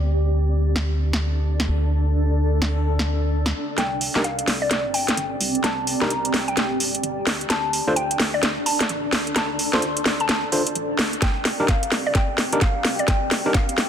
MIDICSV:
0, 0, Header, 1, 6, 480
1, 0, Start_track
1, 0, Tempo, 465116
1, 60, Time_signature, 4, 2, 24, 8
1, 14333, End_track
2, 0, Start_track
2, 0, Title_t, "Synth pluck"
2, 0, Program_c, 0, 84
2, 3899, Note_on_c, 0, 79, 94
2, 4186, Note_off_c, 0, 79, 0
2, 4379, Note_on_c, 0, 77, 90
2, 4595, Note_off_c, 0, 77, 0
2, 4766, Note_on_c, 0, 74, 94
2, 4968, Note_off_c, 0, 74, 0
2, 5098, Note_on_c, 0, 79, 93
2, 5315, Note_off_c, 0, 79, 0
2, 5818, Note_on_c, 0, 81, 90
2, 6035, Note_off_c, 0, 81, 0
2, 6207, Note_on_c, 0, 82, 91
2, 6476, Note_off_c, 0, 82, 0
2, 6687, Note_on_c, 0, 79, 93
2, 6888, Note_off_c, 0, 79, 0
2, 7736, Note_on_c, 0, 81, 95
2, 8025, Note_off_c, 0, 81, 0
2, 8217, Note_on_c, 0, 79, 91
2, 8434, Note_off_c, 0, 79, 0
2, 8608, Note_on_c, 0, 74, 95
2, 8808, Note_off_c, 0, 74, 0
2, 8938, Note_on_c, 0, 81, 92
2, 9155, Note_off_c, 0, 81, 0
2, 9661, Note_on_c, 0, 81, 94
2, 9876, Note_off_c, 0, 81, 0
2, 10051, Note_on_c, 0, 84, 93
2, 10318, Note_off_c, 0, 84, 0
2, 10532, Note_on_c, 0, 81, 97
2, 10731, Note_off_c, 0, 81, 0
2, 11584, Note_on_c, 0, 79, 88
2, 11868, Note_off_c, 0, 79, 0
2, 12064, Note_on_c, 0, 77, 85
2, 12278, Note_off_c, 0, 77, 0
2, 12451, Note_on_c, 0, 74, 92
2, 12527, Note_off_c, 0, 74, 0
2, 12543, Note_on_c, 0, 79, 94
2, 12828, Note_off_c, 0, 79, 0
2, 13021, Note_on_c, 0, 77, 89
2, 13236, Note_off_c, 0, 77, 0
2, 13410, Note_on_c, 0, 74, 89
2, 13486, Note_off_c, 0, 74, 0
2, 13501, Note_on_c, 0, 79, 90
2, 13787, Note_off_c, 0, 79, 0
2, 13979, Note_on_c, 0, 77, 89
2, 14195, Note_off_c, 0, 77, 0
2, 14333, End_track
3, 0, Start_track
3, 0, Title_t, "Ambient pad"
3, 0, Program_c, 1, 92
3, 0, Note_on_c, 1, 60, 67
3, 0, Note_on_c, 1, 62, 76
3, 0, Note_on_c, 1, 67, 83
3, 0, Note_on_c, 1, 74, 67
3, 622, Note_on_c, 1, 69, 74
3, 1248, Note_off_c, 1, 67, 0
3, 1453, Note_off_c, 1, 60, 0
3, 3900, Note_on_c, 1, 60, 88
3, 4748, Note_off_c, 1, 69, 0
3, 4783, Note_on_c, 1, 67, 87
3, 4860, Note_off_c, 1, 62, 0
3, 7502, Note_on_c, 1, 62, 93
3, 8178, Note_on_c, 1, 69, 73
3, 8436, Note_off_c, 1, 67, 0
3, 8616, Note_off_c, 1, 60, 0
3, 11583, Note_on_c, 1, 60, 85
3, 11962, Note_on_c, 1, 67, 82
3, 12224, Note_off_c, 1, 69, 0
3, 13021, Note_off_c, 1, 62, 0
3, 14333, Note_off_c, 1, 60, 0
3, 14333, Note_off_c, 1, 67, 0
3, 14333, Note_off_c, 1, 74, 0
3, 14333, End_track
4, 0, Start_track
4, 0, Title_t, "Tine electric piano"
4, 0, Program_c, 2, 4
4, 4288, Note_on_c, 2, 63, 80
4, 4288, Note_on_c, 2, 67, 83
4, 4289, Note_on_c, 2, 62, 91
4, 4289, Note_on_c, 2, 70, 100
4, 4345, Note_off_c, 2, 62, 0
4, 4345, Note_off_c, 2, 63, 0
4, 4345, Note_off_c, 2, 67, 0
4, 4345, Note_off_c, 2, 70, 0
4, 6209, Note_on_c, 2, 62, 79
4, 6209, Note_on_c, 2, 63, 73
4, 6209, Note_on_c, 2, 67, 74
4, 6209, Note_on_c, 2, 70, 83
4, 6299, Note_off_c, 2, 62, 0
4, 6299, Note_off_c, 2, 63, 0
4, 6299, Note_off_c, 2, 67, 0
4, 6299, Note_off_c, 2, 70, 0
4, 8128, Note_on_c, 2, 62, 95
4, 8128, Note_on_c, 2, 65, 87
4, 8128, Note_on_c, 2, 69, 85
4, 8128, Note_on_c, 2, 72, 104
4, 8185, Note_off_c, 2, 62, 0
4, 8185, Note_off_c, 2, 65, 0
4, 8185, Note_off_c, 2, 69, 0
4, 8185, Note_off_c, 2, 72, 0
4, 10049, Note_on_c, 2, 62, 78
4, 10049, Note_on_c, 2, 65, 72
4, 10049, Note_on_c, 2, 69, 76
4, 10049, Note_on_c, 2, 72, 88
4, 10139, Note_off_c, 2, 62, 0
4, 10139, Note_off_c, 2, 65, 0
4, 10139, Note_off_c, 2, 69, 0
4, 10139, Note_off_c, 2, 72, 0
4, 10860, Note_on_c, 2, 62, 75
4, 10860, Note_on_c, 2, 65, 68
4, 10860, Note_on_c, 2, 69, 67
4, 10861, Note_on_c, 2, 72, 80
4, 10952, Note_off_c, 2, 62, 0
4, 10952, Note_off_c, 2, 65, 0
4, 10952, Note_off_c, 2, 69, 0
4, 10953, Note_off_c, 2, 72, 0
4, 11969, Note_on_c, 2, 70, 96
4, 11970, Note_on_c, 2, 62, 91
4, 11970, Note_on_c, 2, 63, 81
4, 11970, Note_on_c, 2, 67, 80
4, 12025, Note_off_c, 2, 70, 0
4, 12026, Note_off_c, 2, 62, 0
4, 12026, Note_off_c, 2, 63, 0
4, 12026, Note_off_c, 2, 67, 0
4, 12929, Note_on_c, 2, 62, 93
4, 12929, Note_on_c, 2, 63, 83
4, 12929, Note_on_c, 2, 67, 82
4, 12929, Note_on_c, 2, 70, 97
4, 12985, Note_off_c, 2, 62, 0
4, 12985, Note_off_c, 2, 63, 0
4, 12985, Note_off_c, 2, 70, 0
4, 12986, Note_off_c, 2, 67, 0
4, 13888, Note_on_c, 2, 62, 91
4, 13889, Note_on_c, 2, 63, 85
4, 13889, Note_on_c, 2, 67, 84
4, 13889, Note_on_c, 2, 70, 104
4, 13945, Note_off_c, 2, 62, 0
4, 13945, Note_off_c, 2, 63, 0
4, 13945, Note_off_c, 2, 67, 0
4, 13945, Note_off_c, 2, 70, 0
4, 14333, End_track
5, 0, Start_track
5, 0, Title_t, "FM bass"
5, 0, Program_c, 3, 39
5, 0, Note_on_c, 3, 38, 86
5, 1722, Note_off_c, 3, 38, 0
5, 1741, Note_on_c, 3, 38, 86
5, 3642, Note_off_c, 3, 38, 0
5, 3899, Note_on_c, 3, 36, 98
5, 4221, Note_off_c, 3, 36, 0
5, 4288, Note_on_c, 3, 36, 84
5, 4579, Note_off_c, 3, 36, 0
5, 4618, Note_on_c, 3, 36, 80
5, 5007, Note_on_c, 3, 31, 97
5, 5022, Note_off_c, 3, 36, 0
5, 5298, Note_off_c, 3, 31, 0
5, 5339, Note_on_c, 3, 31, 93
5, 5528, Note_off_c, 3, 31, 0
5, 5579, Note_on_c, 3, 36, 87
5, 5768, Note_off_c, 3, 36, 0
5, 5819, Note_on_c, 3, 36, 95
5, 6141, Note_off_c, 3, 36, 0
5, 6207, Note_on_c, 3, 36, 83
5, 6498, Note_off_c, 3, 36, 0
5, 6538, Note_on_c, 3, 36, 83
5, 6927, Note_on_c, 3, 31, 102
5, 6943, Note_off_c, 3, 36, 0
5, 7218, Note_off_c, 3, 31, 0
5, 7259, Note_on_c, 3, 31, 94
5, 7448, Note_off_c, 3, 31, 0
5, 7499, Note_on_c, 3, 38, 85
5, 7688, Note_off_c, 3, 38, 0
5, 7738, Note_on_c, 3, 38, 99
5, 8061, Note_off_c, 3, 38, 0
5, 8128, Note_on_c, 3, 38, 85
5, 8419, Note_off_c, 3, 38, 0
5, 8459, Note_on_c, 3, 38, 82
5, 8848, Note_on_c, 3, 26, 101
5, 8864, Note_off_c, 3, 38, 0
5, 9139, Note_off_c, 3, 26, 0
5, 9180, Note_on_c, 3, 33, 102
5, 9369, Note_off_c, 3, 33, 0
5, 9421, Note_on_c, 3, 38, 87
5, 9609, Note_off_c, 3, 38, 0
5, 9660, Note_on_c, 3, 38, 96
5, 9982, Note_off_c, 3, 38, 0
5, 10048, Note_on_c, 3, 38, 86
5, 10339, Note_off_c, 3, 38, 0
5, 10380, Note_on_c, 3, 38, 81
5, 10768, Note_on_c, 3, 26, 100
5, 10783, Note_off_c, 3, 38, 0
5, 11059, Note_off_c, 3, 26, 0
5, 11100, Note_on_c, 3, 33, 99
5, 11289, Note_off_c, 3, 33, 0
5, 11340, Note_on_c, 3, 38, 83
5, 11529, Note_off_c, 3, 38, 0
5, 11580, Note_on_c, 3, 36, 100
5, 11902, Note_off_c, 3, 36, 0
5, 11968, Note_on_c, 3, 36, 84
5, 12258, Note_off_c, 3, 36, 0
5, 12301, Note_on_c, 3, 36, 85
5, 12689, Note_on_c, 3, 31, 101
5, 12704, Note_off_c, 3, 36, 0
5, 12979, Note_off_c, 3, 31, 0
5, 13021, Note_on_c, 3, 31, 100
5, 13209, Note_off_c, 3, 31, 0
5, 13259, Note_on_c, 3, 36, 88
5, 13448, Note_off_c, 3, 36, 0
5, 13500, Note_on_c, 3, 36, 99
5, 13822, Note_off_c, 3, 36, 0
5, 13888, Note_on_c, 3, 36, 86
5, 14179, Note_off_c, 3, 36, 0
5, 14219, Note_on_c, 3, 36, 82
5, 14333, Note_off_c, 3, 36, 0
5, 14333, End_track
6, 0, Start_track
6, 0, Title_t, "Drums"
6, 781, Note_on_c, 9, 40, 58
6, 884, Note_off_c, 9, 40, 0
6, 1170, Note_on_c, 9, 40, 58
6, 1273, Note_off_c, 9, 40, 0
6, 1649, Note_on_c, 9, 40, 61
6, 1752, Note_off_c, 9, 40, 0
6, 2701, Note_on_c, 9, 40, 60
6, 2804, Note_off_c, 9, 40, 0
6, 3089, Note_on_c, 9, 40, 61
6, 3192, Note_off_c, 9, 40, 0
6, 3569, Note_on_c, 9, 40, 66
6, 3672, Note_off_c, 9, 40, 0
6, 3899, Note_on_c, 9, 38, 44
6, 3899, Note_on_c, 9, 42, 61
6, 4002, Note_off_c, 9, 38, 0
6, 4002, Note_off_c, 9, 42, 0
6, 4138, Note_on_c, 9, 46, 101
6, 4242, Note_off_c, 9, 46, 0
6, 4288, Note_on_c, 9, 38, 41
6, 4379, Note_on_c, 9, 42, 60
6, 4391, Note_off_c, 9, 38, 0
6, 4482, Note_off_c, 9, 42, 0
6, 4527, Note_on_c, 9, 42, 63
6, 4619, Note_on_c, 9, 38, 47
6, 4619, Note_on_c, 9, 46, 89
6, 4630, Note_off_c, 9, 42, 0
6, 4722, Note_off_c, 9, 38, 0
6, 4722, Note_off_c, 9, 46, 0
6, 4859, Note_on_c, 9, 38, 46
6, 4859, Note_on_c, 9, 42, 64
6, 4962, Note_off_c, 9, 38, 0
6, 4962, Note_off_c, 9, 42, 0
6, 5099, Note_on_c, 9, 46, 104
6, 5202, Note_off_c, 9, 46, 0
6, 5247, Note_on_c, 9, 38, 44
6, 5247, Note_on_c, 9, 42, 62
6, 5340, Note_off_c, 9, 42, 0
6, 5340, Note_on_c, 9, 42, 59
6, 5351, Note_off_c, 9, 38, 0
6, 5443, Note_off_c, 9, 42, 0
6, 5579, Note_on_c, 9, 46, 95
6, 5682, Note_off_c, 9, 46, 0
6, 5728, Note_on_c, 9, 42, 35
6, 5820, Note_off_c, 9, 42, 0
6, 5820, Note_on_c, 9, 38, 47
6, 5820, Note_on_c, 9, 42, 60
6, 5923, Note_off_c, 9, 38, 0
6, 5923, Note_off_c, 9, 42, 0
6, 6060, Note_on_c, 9, 46, 98
6, 6163, Note_off_c, 9, 46, 0
6, 6209, Note_on_c, 9, 38, 46
6, 6300, Note_on_c, 9, 42, 62
6, 6312, Note_off_c, 9, 38, 0
6, 6403, Note_off_c, 9, 42, 0
6, 6450, Note_on_c, 9, 42, 62
6, 6541, Note_on_c, 9, 38, 52
6, 6541, Note_on_c, 9, 46, 91
6, 6553, Note_off_c, 9, 42, 0
6, 6644, Note_off_c, 9, 38, 0
6, 6644, Note_off_c, 9, 46, 0
6, 6689, Note_on_c, 9, 42, 33
6, 6781, Note_off_c, 9, 42, 0
6, 6781, Note_on_c, 9, 38, 53
6, 6781, Note_on_c, 9, 42, 59
6, 6884, Note_off_c, 9, 38, 0
6, 6884, Note_off_c, 9, 42, 0
6, 7020, Note_on_c, 9, 46, 100
6, 7123, Note_off_c, 9, 46, 0
6, 7168, Note_on_c, 9, 42, 62
6, 7260, Note_off_c, 9, 42, 0
6, 7260, Note_on_c, 9, 42, 59
6, 7363, Note_off_c, 9, 42, 0
6, 7500, Note_on_c, 9, 38, 57
6, 7500, Note_on_c, 9, 46, 90
6, 7603, Note_off_c, 9, 38, 0
6, 7603, Note_off_c, 9, 46, 0
6, 7649, Note_on_c, 9, 42, 35
6, 7741, Note_off_c, 9, 42, 0
6, 7741, Note_on_c, 9, 38, 58
6, 7741, Note_on_c, 9, 42, 62
6, 7844, Note_off_c, 9, 38, 0
6, 7844, Note_off_c, 9, 42, 0
6, 7980, Note_on_c, 9, 46, 97
6, 8083, Note_off_c, 9, 46, 0
6, 8219, Note_on_c, 9, 42, 61
6, 8323, Note_off_c, 9, 42, 0
6, 8368, Note_on_c, 9, 42, 61
6, 8458, Note_on_c, 9, 38, 60
6, 8458, Note_on_c, 9, 46, 85
6, 8471, Note_off_c, 9, 42, 0
6, 8561, Note_off_c, 9, 38, 0
6, 8561, Note_off_c, 9, 46, 0
6, 8698, Note_on_c, 9, 38, 61
6, 8698, Note_on_c, 9, 42, 60
6, 8801, Note_off_c, 9, 38, 0
6, 8801, Note_off_c, 9, 42, 0
6, 8938, Note_on_c, 9, 46, 100
6, 9042, Note_off_c, 9, 46, 0
6, 9087, Note_on_c, 9, 38, 54
6, 9087, Note_on_c, 9, 42, 63
6, 9178, Note_off_c, 9, 42, 0
6, 9178, Note_on_c, 9, 42, 59
6, 9190, Note_off_c, 9, 38, 0
6, 9281, Note_off_c, 9, 42, 0
6, 9418, Note_on_c, 9, 38, 64
6, 9418, Note_on_c, 9, 46, 88
6, 9521, Note_off_c, 9, 38, 0
6, 9521, Note_off_c, 9, 46, 0
6, 9567, Note_on_c, 9, 42, 33
6, 9658, Note_off_c, 9, 42, 0
6, 9658, Note_on_c, 9, 38, 62
6, 9658, Note_on_c, 9, 42, 61
6, 9761, Note_off_c, 9, 38, 0
6, 9761, Note_off_c, 9, 42, 0
6, 9897, Note_on_c, 9, 46, 93
6, 10000, Note_off_c, 9, 46, 0
6, 10045, Note_on_c, 9, 38, 58
6, 10136, Note_on_c, 9, 42, 63
6, 10148, Note_off_c, 9, 38, 0
6, 10240, Note_off_c, 9, 42, 0
6, 10286, Note_on_c, 9, 42, 64
6, 10377, Note_on_c, 9, 38, 64
6, 10377, Note_on_c, 9, 46, 80
6, 10389, Note_off_c, 9, 42, 0
6, 10481, Note_off_c, 9, 38, 0
6, 10481, Note_off_c, 9, 46, 0
6, 10528, Note_on_c, 9, 42, 32
6, 10619, Note_off_c, 9, 42, 0
6, 10619, Note_on_c, 9, 38, 65
6, 10619, Note_on_c, 9, 42, 60
6, 10722, Note_off_c, 9, 38, 0
6, 10722, Note_off_c, 9, 42, 0
6, 10859, Note_on_c, 9, 46, 96
6, 10962, Note_off_c, 9, 46, 0
6, 11007, Note_on_c, 9, 42, 63
6, 11099, Note_off_c, 9, 42, 0
6, 11099, Note_on_c, 9, 42, 62
6, 11202, Note_off_c, 9, 42, 0
6, 11339, Note_on_c, 9, 38, 72
6, 11339, Note_on_c, 9, 46, 87
6, 11442, Note_off_c, 9, 38, 0
6, 11442, Note_off_c, 9, 46, 0
6, 11488, Note_on_c, 9, 42, 36
6, 11579, Note_off_c, 9, 42, 0
6, 11579, Note_on_c, 9, 38, 72
6, 11579, Note_on_c, 9, 42, 63
6, 11580, Note_on_c, 9, 36, 95
6, 11682, Note_off_c, 9, 38, 0
6, 11682, Note_off_c, 9, 42, 0
6, 11683, Note_off_c, 9, 36, 0
6, 11818, Note_on_c, 9, 38, 70
6, 11818, Note_on_c, 9, 46, 97
6, 11921, Note_off_c, 9, 38, 0
6, 11921, Note_off_c, 9, 46, 0
6, 12059, Note_on_c, 9, 38, 76
6, 12059, Note_on_c, 9, 42, 67
6, 12060, Note_on_c, 9, 36, 98
6, 12162, Note_off_c, 9, 38, 0
6, 12162, Note_off_c, 9, 42, 0
6, 12163, Note_off_c, 9, 36, 0
6, 12207, Note_on_c, 9, 42, 65
6, 12298, Note_on_c, 9, 38, 72
6, 12298, Note_on_c, 9, 46, 86
6, 12310, Note_off_c, 9, 42, 0
6, 12401, Note_off_c, 9, 38, 0
6, 12401, Note_off_c, 9, 46, 0
6, 12538, Note_on_c, 9, 38, 72
6, 12538, Note_on_c, 9, 42, 64
6, 12540, Note_on_c, 9, 36, 93
6, 12641, Note_off_c, 9, 38, 0
6, 12641, Note_off_c, 9, 42, 0
6, 12643, Note_off_c, 9, 36, 0
6, 12777, Note_on_c, 9, 38, 79
6, 12777, Note_on_c, 9, 46, 102
6, 12880, Note_off_c, 9, 38, 0
6, 12880, Note_off_c, 9, 46, 0
6, 12926, Note_on_c, 9, 42, 66
6, 13017, Note_off_c, 9, 42, 0
6, 13017, Note_on_c, 9, 38, 75
6, 13017, Note_on_c, 9, 42, 64
6, 13020, Note_on_c, 9, 36, 97
6, 13120, Note_off_c, 9, 38, 0
6, 13120, Note_off_c, 9, 42, 0
6, 13123, Note_off_c, 9, 36, 0
6, 13257, Note_on_c, 9, 38, 82
6, 13257, Note_on_c, 9, 46, 87
6, 13360, Note_off_c, 9, 38, 0
6, 13360, Note_off_c, 9, 46, 0
6, 13408, Note_on_c, 9, 42, 37
6, 13498, Note_off_c, 9, 42, 0
6, 13498, Note_on_c, 9, 38, 80
6, 13498, Note_on_c, 9, 42, 67
6, 13500, Note_on_c, 9, 36, 100
6, 13601, Note_off_c, 9, 38, 0
6, 13601, Note_off_c, 9, 42, 0
6, 13603, Note_off_c, 9, 36, 0
6, 13739, Note_on_c, 9, 38, 78
6, 13739, Note_on_c, 9, 46, 106
6, 13842, Note_off_c, 9, 38, 0
6, 13842, Note_off_c, 9, 46, 0
6, 13978, Note_on_c, 9, 38, 85
6, 13978, Note_on_c, 9, 42, 69
6, 13980, Note_on_c, 9, 36, 97
6, 14081, Note_off_c, 9, 38, 0
6, 14081, Note_off_c, 9, 42, 0
6, 14083, Note_off_c, 9, 36, 0
6, 14128, Note_on_c, 9, 42, 67
6, 14219, Note_on_c, 9, 38, 82
6, 14219, Note_on_c, 9, 46, 91
6, 14231, Note_off_c, 9, 42, 0
6, 14322, Note_off_c, 9, 38, 0
6, 14322, Note_off_c, 9, 46, 0
6, 14333, End_track
0, 0, End_of_file